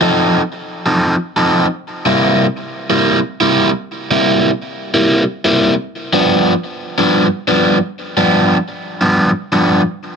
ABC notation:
X:1
M:4/4
L:1/8
Q:"Swing" 1/4=118
K:Gdor
V:1 name="Overdriven electric guitar"
[F,C_EA] z2 [F,CEA] z [F,CEA] z2 | [C,G,B,E] z2 [C,G,B,E] z [C,G,B,E] z2 | [C,G,B,E] z2 [C,G,B,E] z [C,G,B,E] z2 | [G,,F,=B,D] z2 [G,,F,B,D] z [G,,F,B,D] z2 |
[G,,F,=B,D] z2 [G,,F,B,D] z [G,,F,B,D] z2 |]